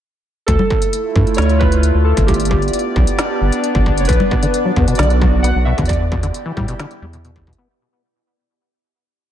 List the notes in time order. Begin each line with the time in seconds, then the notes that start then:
0.46 D2 A3 A4, kick, closed hi-hat
0.57 E4, low conga
0.70 kick
0.82 closed hi-hat
0.89 F4, closed hi-hat
1.16 G2, kick
1.23 D5, closed hi-hat
1.34 D2 C#5, snare, closed hi-hat
1.38 closed hi-hat
1.42 closed hi-hat
1.49 closed hi-hat
1.59 B4, kick
1.72 closed hi-hat
1.83 closed hi-hat
1.95 D2
2.04 A4
2.17 G1, kick, closed hi-hat
2.27 B3 G4, kick, closed hi-hat
2.34 closed hi-hat
2.40 D4, closed hi-hat
2.45 closed hi-hat
2.49 G4, kick
2.59 G4, closed hi-hat
2.68 closed hi-hat
2.73 closed hi-hat
2.79 closed hi-hat
2.96 B1, kick
3.07 closed hi-hat
3.19 snare, closed hi-hat
3.41 G1
3.52 closed hi-hat
3.64 closed hi-hat
3.75 G1, kick
3.86 kick
3.98 F1 C#5, closed hi-hat
4.05 B1 B4, kick, closed hi-hat
4.09 closed hi-hat
4.13 closed hi-hat
4.20 low conga
4.31 B2, kick
4.39 D3 F#4, closed hi-hat
4.54 closed hi-hat
4.65 F#3
4.76 E2 B3, kick
4.88 B2, closed hi-hat
4.95 D5, snare, closed hi-hat
4.99 B1 D3, closed hi-hat
5.03 closed hi-hat
5.10 closed hi-hat
5.22 F#3, kick
5.42 B3 F#5, closed hi-hat
5.55 B1
5.65 B2 E5
5.78 E2 D3, kick, closed hi-hat
5.85 D5, closed hi-hat
5.89 kick, closed hi-hat
5.93 closed hi-hat
6.00 G4
6.12 B2 E4, kick
6.23 D3, closed hi-hat
6.34 closed hi-hat
6.46 E3
6.57 A2 G3, kick
6.68 B2, closed hi-hat
6.79 D3, snare, closed hi-hat
6.91 closed hi-hat
7.02 E2 G3
7.13 B2, closed hi-hat
7.25 B2, closed hi-hat
7.36 kick
7.47 B2, kick
7.53 closed hi-hat
7.58 B3